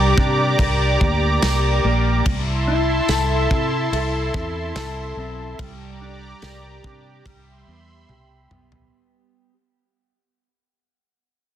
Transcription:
Already playing: C2 G3 D4 G4 A#4 D5 A#5 D6
0.18 C3 D4, kick
0.59 C2 A#4, kick, ride
1.01 D2 A#3, kick
1.42 C2 A#4, snare, ride, tambourine
1.84 A#1 A#3
2.26 C2 E4 E5 A5 C6, kick, ride
2.68 E4
3.09 C2 A4, snare, ride, tambourine
3.51 C3 E4, kick
3.92 C2 A4, ride
4.34 E2 C4, kick
4.76 C2 A4, snare, ride, tambourine
5.17 B1 C4
5.59 C2 G3 G4 D5 A#5 D6, kick, ride
6.01 D4
6.42 C2 A#4, snare, ride, tambourine
6.84 C3 D4, kick
7.26 C2 G3 E5 B5 C6, kick, ride
7.67 E2 B3
8.09 C2 G4, high tom
8.51 B1 B3, mid tom
8.72 floor tom

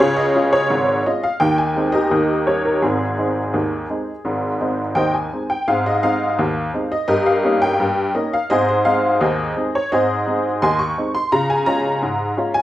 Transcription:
0.00 C#2 C#3 F4 G#4 C#5
0.16 D#5
0.35 G#3 C#4 F4
0.53 C#5
0.70 G#1 G#2
1.06 G#3 C#4 F4 D#5
1.23 F5
1.40 D#2 D#3 G5
1.58 G#5
1.76 G#3 C4 D#4
1.92 G4 A#4 D#5
2.11 D#2 D#3
2.47 G3 C#4 D#4 C#5
2.65 A#4
2.82 G#1 G#2 C4 D#4 G#4
3.18 G#3 C4 D#4
3.54 D#2 D#3
3.90 G#3 C4 D#4
4.25 G#1 G#2
4.60 G#3 C4 D#4
4.95 D#2 D#3 C5 D#5 G5
5.14 G#5
5.33 G#3 C4 D#4
5.50 G5
5.68 G#2 C4 F5
5.86 D#5
6.03 G#3 C4 D#4 F5
6.39 D#2
6.74 G#3 C4 D#4
6.92 D#5
7.08 G2 G4 A#4 D#5
7.26 F5
7.44 A#3 C#4 D#4
7.62 G5
7.80 G2
8.15 A#3 C#4 D#4 D#5
8.33 F5
8.50 G#2 C4 G#4 C5 D#5
8.69 C5
8.85 G#3 C4 D#4 F5
9.21 D#2 G#4 C5 D#5
9.56 G#3 C4 D#4
9.75 C#5
9.92 G#2 C4 G#4 C5 D#5
10.27 G#3 C4 D#4
10.62 D#2 D#5 G#5 C6
10.79 C#6
10.97 G#3 C4 D#4
11.15 C6
11.32 C#3 F4 A#5
11.50 G#5
11.66 G#3 C#4 F4 A#5
12.02 G#2
12.37 G#3 C#4 F4
12.54 G#5

